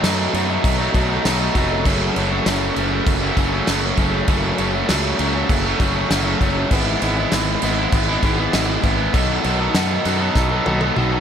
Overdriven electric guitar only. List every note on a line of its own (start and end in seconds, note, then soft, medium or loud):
0.03 0.33 B2 loud
0.03 0.34 F#3 loud
0.03 0.35 A3 loud
0.03 0.35 D#4 medium
0.34 0.80 B2 medium
0.34 0.51 F#3 medium
0.34 0.50 A3 medium
0.34 0.48 D#4 medium
0.49 0.80 F#3 medium
0.49 0.80 A3 medium
0.49 0.78 D#4 medium
0.79 0.95 F#3 medium
0.79 0.95 A3 medium
0.79 0.95 D#4 medium
0.94 1.24 B2 medium
0.94 1.12 F#3 medium
0.94 1.10 A3 medium
0.94 1.09 D#4 medium
1.10 1.25 F#3 medium
1.10 1.26 A3 medium
1.10 1.26 D#4 medium
1.25 1.54 B2 loud
1.25 1.42 F#3 loud
1.25 1.41 A3 loud
1.25 1.39 D#4 loud
1.40 1.55 F#3 medium
1.40 1.56 A3 medium
1.40 1.56 D#4 medium
1.55 1.84 B2 medium
1.55 1.86 F#3 medium
1.55 1.86 A3 medium
1.55 1.85 D#4 medium
1.85 2.46 F#2 medium
1.85 2.15 C#3 medium
1.85 2.16 F#3 medium
1.85 2.17 A3 loud
1.85 2.18 C#4 loud
2.16 2.46 C#3 medium
2.16 2.33 F#3 medium
2.16 2.32 A3 medium
2.16 2.30 C#4 medium
2.31 2.47 F#3 medium
2.31 2.47 A3 medium
2.31 2.48 C#4 medium
2.46 3.67 F#2 loud
2.46 2.75 C#3 loud
2.46 2.77 F#3 loud
2.46 2.77 A3 loud
2.46 2.78 C#4 loud
2.77 3.22 C#3 medium
2.77 2.92 F#3 medium
2.77 2.91 A3 medium
2.77 2.91 C#4 medium
2.91 3.23 F#3 medium
2.91 3.22 A3 medium
2.91 3.21 C#4 medium
3.22 3.37 F#3 medium
3.22 3.37 A3 medium
3.22 3.39 C#4 medium
3.37 3.67 C#3 medium
3.37 3.53 F#3 medium
3.37 3.52 A3 medium
3.37 3.52 C#4 medium
3.53 3.67 F#3 medium
3.53 3.68 A3 medium
3.53 3.69 C#4 medium
3.68 4.13 F#2 loud
3.68 3.96 C#3 loud
3.68 3.83 F#3 medium
3.68 3.83 A3 loud
3.68 3.82 C#4 loud
3.83 3.97 F#3 medium
3.83 3.98 A3 medium
3.83 3.99 C#4 medium
3.97 4.27 C#3 medium
3.97 4.27 F#3 medium
3.97 4.28 A3 medium
3.97 4.29 C#4 medium
4.28 4.87 F#2 loud
4.28 4.57 C#3 loud
4.28 4.58 F#3 loud
4.28 4.58 A3 loud
4.28 4.60 C#4 loud
4.58 4.88 C#3 medium
4.58 4.74 F#3 medium
4.58 4.73 A3 medium
4.58 4.73 C#4 medium
4.73 4.88 F#3 medium
4.73 4.89 A3 medium
4.73 4.90 C#4 medium
4.88 5.49 F#2 loud
4.88 5.18 C#3 loud
4.88 5.19 F#3 loud
4.88 5.19 A3 loud
4.88 5.21 C#4 loud
5.19 5.65 C#3 medium
5.19 5.35 F#3 medium
5.19 5.34 A3 medium
5.19 5.33 C#4 medium
5.34 5.65 F#3 medium
5.34 5.64 A3 medium
5.34 5.63 C#4 medium
5.65 5.79 F#3 medium
5.65 5.80 A3 medium
5.65 5.80 C#4 medium
5.80 6.09 C#3 medium
5.80 5.96 F#3 medium
5.80 5.95 A3 loud
5.80 5.94 C#4 medium
5.95 6.10 F#3 medium
5.95 6.11 A3 medium
5.95 6.11 C#4 medium
6.10 6.56 F#2 loud
6.10 6.39 C#3 medium
6.10 6.26 F#3 medium
6.10 6.25 A3 loud
6.10 6.24 C#4 loud
6.25 6.40 F#3 medium
6.25 6.41 A3 medium
6.25 6.41 C#4 medium
6.40 6.69 C#3 medium
6.40 6.70 F#3 medium
6.40 6.70 A3 medium
6.40 6.70 C#4 medium
6.71 7.30 G#2 medium
6.71 7.00 E3 loud
6.71 7.01 G#3 loud
6.71 7.03 B3 loud
6.71 7.02 E4 loud
7.01 7.31 E3 medium
7.01 7.18 G#3 medium
7.01 7.17 B3 loud
7.01 7.15 E4 medium
7.16 7.31 G#3 medium
7.16 7.33 B3 medium
7.16 7.32 E4 medium
7.32 7.92 G#2 loud
7.32 7.61 E3 loud
7.32 7.62 G#3 loud
7.32 7.63 B3 loud
7.32 7.63 E4 loud
7.62 8.08 E3 medium
7.62 7.79 G#3 medium
7.62 7.78 B3 medium
7.62 7.77 E4 loud
7.78 8.09 G#3 medium
7.78 8.08 B3 medium
7.78 8.07 E4 medium
8.08 8.23 G#3 medium
8.08 8.23 B3 medium
8.08 8.24 E4 medium
8.23 8.52 E3 medium
8.23 8.39 G#3 medium
8.23 8.38 B3 medium
8.23 8.37 E4 medium
8.38 8.53 G#3 medium
8.38 8.53 B3 medium
8.38 8.54 E4 medium
8.53 8.99 G#2 medium
8.53 8.82 E3 loud
8.53 8.69 G#3 loud
8.53 8.68 B3 medium
8.53 8.67 E4 loud
8.68 8.83 G#3 medium
8.68 8.84 B3 medium
8.68 8.84 E4 medium
8.83 9.12 E3 medium
8.83 9.12 G#3 medium
8.83 9.13 B3 medium
8.83 9.13 E4 medium
9.13 9.73 B2 loud
9.13 9.74 D#3 loud
9.13 9.43 F#3 loud
9.13 9.43 B3 loud
9.13 9.44 D#4 loud
9.13 9.45 A4 loud
9.44 9.60 F#3 medium
9.44 9.60 B3 medium
9.44 9.59 D#4 medium
9.44 9.58 A4 medium
9.59 9.74 F#3 medium
9.59 9.75 B3 medium
9.59 9.75 D#4 medium
9.59 9.75 A4 medium
9.74 10.35 B2 loud
9.74 10.36 D#3 medium
9.74 10.04 F#3 loud
9.74 10.05 B3 loud
9.74 10.05 D#4 medium
9.74 10.06 A4 loud
10.05 10.21 F#3 medium
10.05 10.20 B3 medium
10.05 10.20 D#4 medium
10.05 10.19 A4 loud
10.20 10.51 F#3 medium
10.20 10.51 B3 medium
10.20 10.50 D#4 medium
10.20 10.49 A4 medium
10.51 10.64 F#3 medium
10.51 10.65 B3 medium
10.51 10.66 D#4 medium
10.51 10.66 A4 medium
10.65 10.82 F#3 medium
10.65 10.81 B3 medium
10.65 10.81 D#4 medium
10.65 10.80 A4 medium
10.81 10.96 F#3 medium
10.81 10.96 B3 medium
10.81 10.97 D#4 medium
10.81 10.97 A4 medium
10.96 11.20 B2 medium
10.96 11.20 D#3 medium
10.96 11.12 F#3 loud
10.96 11.12 B3 loud
10.96 11.11 D#4 medium
10.96 11.10 A4 loud
11.12 11.20 F#3 medium
11.12 11.20 B3 medium
11.12 11.20 D#4 medium
11.12 11.20 A4 medium